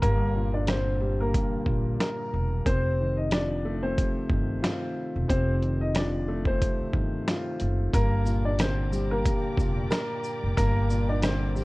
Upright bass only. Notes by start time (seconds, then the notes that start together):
0.03 G1
1.54 muted upright bass stroke
1.66 A#1
2.34 E1
2.66 F1
4.30 G1
5.16 E1
5.30 F1
6.81 muted upright bass stroke
6.94 G1
7.61 F#1
7.94 G1
9.58 F1
10.43 F#1
10.58 G1